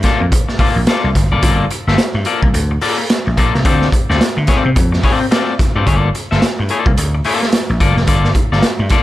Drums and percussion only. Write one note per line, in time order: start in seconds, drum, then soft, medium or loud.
0.03 kick medium
0.03 snare soft
0.03 closed hi-hat medium
0.32 kick loud
0.32 closed hi-hat medium
0.49 snare soft
0.59 kick medium
0.59 open hi-hat medium
0.87 snare loud
0.87 closed hi-hat medium
1.15 kick medium
1.15 snare soft
1.15 closed hi-hat medium
1.43 kick loud
1.43 closed hi-hat loud
1.70 closed hi-hat medium
1.88 snare soft
1.98 snare loud
1.98 closed hi-hat medium
2.25 closed hi-hat medium
2.43 kick medium
2.54 closed hi-hat loud
2.81 open hi-hat medium
3.10 snare loud
3.10 closed hi-hat loud
3.37 kick medium
3.37 closed hi-hat medium
3.54 snare soft
3.65 kick loud
3.65 closed hi-hat medium
3.82 snare soft
3.92 kick medium
3.92 closed hi-hat medium
4.10 snare soft
4.21 snare loud
4.21 closed hi-hat medium
4.47 kick medium
4.47 snare soft
4.47 closed hi-hat medium
4.76 kick loud
4.76 closed hi-hat loud
4.93 snare soft
5.04 kick medium
5.04 open hi-hat medium
5.32 snare loud
5.32 closed hi-hat medium
5.59 kick loud
5.59 snare soft
5.59 closed hi-hat medium
5.87 kick loud
5.87 closed hi-hat medium
6.15 closed hi-hat medium
6.32 snare soft
6.42 snare loud
6.42 closed hi-hat medium
6.69 closed hi-hat medium
6.86 kick loud
6.97 closed hi-hat loud
7.24 open hi-hat medium
7.43 snare soft
7.52 snare loud
7.52 closed hi-hat loud
7.80 kick medium
7.80 closed hi-hat medium
7.97 snare soft
8.07 kick loud
8.07 closed hi-hat medium
8.24 snare soft
8.35 kick medium
8.35 closed hi-hat medium
8.53 snare soft
8.63 snare medium
8.63 closed hi-hat medium
8.89 kick loud
8.89 snare soft
8.89 closed hi-hat medium